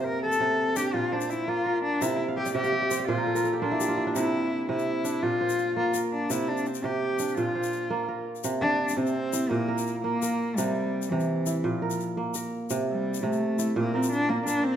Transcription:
Already playing: kora C3 A#3 D4 A#4 C5
0.00 cello C5
0.05 cello A#4
0.23 cello A4
0.32 shaker
0.40 kora C3
0.76 kora D4, cello G4, shaker
0.94 kora A#2, cello F4
1.12 cello D4, kora C5
1.21 shaker
1.30 cello E4, shaker
1.48 kora A#3, cello F4
1.66 kora A#4
1.84 cello D4
2.01 kora C3, cello E4, shaker
2.28 kora F5
2.37 cello G4, kora E5
2.46 kora D5, shaker
2.55 kora C3 E5, cello G4
2.64 kora F5, shaker
2.72 kora E5
2.82 kora D5
2.91 kora C5, shaker
2.99 kora D5
3.08 kora A#2 C5, cello F4
3.17 kora A#4
3.27 kora A4
3.35 kora A#4, shaker
3.44 kora A4, shaker
3.53 kora G4
3.62 kora A#3 F4, cello D4
3.71 kora E4
3.80 kora G4, shaker
3.88 kora F4
3.98 kora E4
4.07 kora D4
4.15 kora C3, cello E4, shaker
4.69 kora C3, cello E4
4.79 shaker
5.04 kora D4, shaker
5.23 kora A#2, cello F4
5.41 kora C5
5.49 shaker
5.58 shaker
5.76 kora A#3, cello F4
5.94 kora A#4, shaker
6.13 cello D4
6.30 kora C3, cello E4, shaker
6.48 cello D4
6.57 shaker
6.66 cello C4, shaker
6.74 shaker
6.84 kora C3, cello G4
7.19 kora D4, shaker
7.37 kora A#2, cello F4, shaker
7.55 kora C5
7.63 shaker
7.73 shaker
7.90 kora A#3
8.09 kora A#4
8.35 shaker
8.44 kora C3, shaker
8.61 cello D4
8.89 cello D4, shaker
8.97 kora C3, cello C4
9.07 shaker
9.33 kora E4, shaker
9.50 kora A#2, cello A#3
9.68 kora A#4
9.78 shaker
9.87 shaker
10.02 cello A#3, kora A#3
10.22 kora A#4, shaker
10.56 kora C3, cello G3, shaker
11.02 shaker
11.09 kora C3, cello E3
11.20 shaker
11.46 kora E4, shaker
11.64 kora A#2, cello F3
11.82 kora A#4
11.90 shaker
12.00 shaker
12.17 kora A#3
12.34 kora A#4, shaker
12.70 kora C3, shaker
12.89 cello G3
13.14 shaker
13.23 kora C3, cello A3
13.33 shaker
13.59 kora E4, shaker
13.76 kora A#2, cello A#3
13.94 cello C4, kora A#4
14.03 shaker
14.12 cello D4, shaker
14.29 cello A#3, kora A#3
14.46 cello D4, kora A#4, shaker
14.64 cello C4

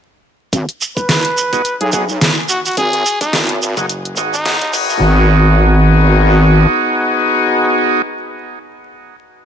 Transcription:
0.53 wobble bass G#1, kick, closed hi-hat, shekere
0.69 closed hi-hat
0.81 shekere
0.96 trumpet B4, kick, shekere
1.09 snare, closed hi-hat, shekere
1.25 closed hi-hat
1.38 shekere
1.53 tonewheel organ B3 D#4 F#4 G#4, kick, closed hi-hat, shekere
1.65 closed hi-hat, shekere
1.81 wobble bass B1, trumpet G#4, closed hi-hat
1.92 tonewheel organ B3 D#4 F#4 G#4, trumpet G#4, kick, shekere
2.09 shekere
2.21 snare, closed hi-hat, shekere
2.49 trumpet F#4, closed hi-hat, shekere
2.65 trumpet F#4, closed hi-hat, shekere
2.67 closed hi-hat
2.71 closed hi-hat
2.73 closed hi-hat
2.75 closed hi-hat
2.77 wobble bass G#1, trumpet G#4, kick, closed hi-hat, shekere
2.93 closed hi-hat
3.06 shekere
3.21 trumpet D#4, kick, closed hi-hat, shekere
3.33 wobble bass G#1, snare, closed hi-hat, shekere
3.49 closed hi-hat
3.63 shekere
3.77 slap bass F#1, tonewheel organ B3 D#4 F#4 G#4, kick, closed hi-hat, shekere
3.89 closed hi-hat, shekere
4.05 closed hi-hat
4.17 slap bass G#1, tonewheel organ B3 D#4 F#4 G#4, kick, shekere
4.33 trumpet D#4, shekere
4.46 tonewheel organ B3 D#4 F#4 G#4, snare, closed hi-hat, shekere
4.61 wobble bass D#2, kick, closed hi-hat
4.73 wobble bass G#1, tonewheel organ B3 D#4 F#4 G#4, kick, crash, shekere
4.90 shekere

